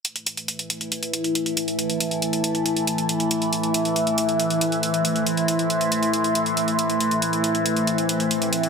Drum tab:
HH |xxxxxxxxxxxxxxxx|xxxxxxxxxxxxxxxx|xxxxxxxxxxxxxxxx|xxxxxxxxxxxxxxxx|

HH |xxxxxxxxxxxxxxxx|